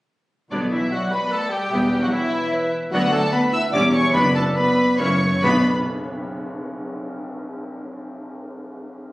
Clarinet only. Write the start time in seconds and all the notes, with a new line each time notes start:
0.91 D5
1.72 E5
2.12 C#5
2.53 B4
2.93 D5
3.33 F#5
3.73 E5
4.14 D5
4.99 A#4
5.44 F#4